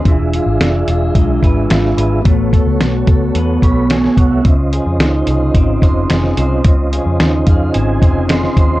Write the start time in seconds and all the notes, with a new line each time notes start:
Already playing: C4 D#4 G#4 C5
0.03 E1 D4 F4 G#4, kick, closed hi-hat
0.07 E3 E5
0.33 F4, closed hi-hat
0.46 G#1
0.60 F1 D4, snare, closed hi-hat
0.88 E1 F4, closed hi-hat
1.15 B1 G#3, kick, closed hi-hat
1.43 G#1 B4, kick, closed hi-hat
1.70 G#1 F4, snare, closed hi-hat
1.85 snare
1.97 G#1 B4, closed hi-hat
2.22 A1 A3 B3 F#4 A4, kick, closed hi-hat
2.28 C#5
2.53 A4, kick, closed hi-hat
2.66 C#2
2.81 B1 F#4, snare, closed hi-hat
3.07 C#2 A4, kick, closed hi-hat
3.35 E2 B3, closed hi-hat
3.62 B1 C#5 B5, kick, closed hi-hat
3.90 A4 G#5, snare, closed hi-hat
4.03 G#5, snare
4.17 C2 C#5 F#5, kick, closed hi-hat
4.31 E5
4.42 C#2 C#3 C#4 F4 C5, kick, closed hi-hat
4.47 D#5
4.73 G#4, closed hi-hat
4.86 F2
4.99 C#2 D#4, snare, closed hi-hat
5.27 C2 G#4, closed hi-hat
5.54 G#1 C4, kick, closed hi-hat
5.82 F1 C5, kick, closed hi-hat
6.10 F1 G#4, snare, closed hi-hat
6.24 snare
6.37 C2 C5, closed hi-hat
6.64 C#2 C#3, kick, closed hi-hat
6.93 G#4, closed hi-hat
7.06 F2
7.20 D#2 D#4, snare, closed hi-hat
7.47 F2 G#4 F5, kick, closed hi-hat
7.74 G#1 C4 G#5, closed hi-hat
8.02 F1 C5, kick, closed hi-hat
8.28 G#4 C6, snare, closed hi-hat
8.43 snare
8.57 D#2 C5, kick, closed hi-hat